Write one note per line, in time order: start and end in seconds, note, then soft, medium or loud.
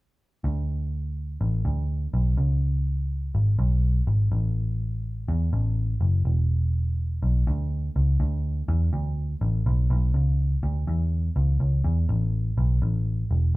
0.44 1.37 D2 medium
1.41 1.61 A1 medium
1.65 2.06 D2 medium
2.14 2.34 B1 medium
2.37 3.30 C#2 medium
3.35 3.55 G#1 medium
3.59 4.00 B1 medium
4.07 4.28 G#1 medium
4.32 5.24 A1 medium
5.28 5.49 E2 medium
5.53 5.94 A1 medium
6.01 6.21 F#1 medium
6.25 7.18 E1 medium
7.22 7.43 B1 medium
7.47 7.88 D2 medium
7.96 8.16 C#2 medium
8.20 8.61 D2 medium
8.68 8.89 E2 medium
8.93 9.34 D2 medium
9.41 9.62 A1 medium
9.66 9.86 B1 medium
9.90 10.11 B1 medium
10.14 10.55 C#2 medium
10.63 10.83 D2 medium
10.87 11.28 E2 medium
11.36 11.56 C#2 medium
11.60 11.81 C#2 medium
11.84 12.05 E2 medium
12.09 12.50 A1 medium
12.58 12.78 B1 medium
12.82 13.23 A1 medium
13.31 13.51 E1 medium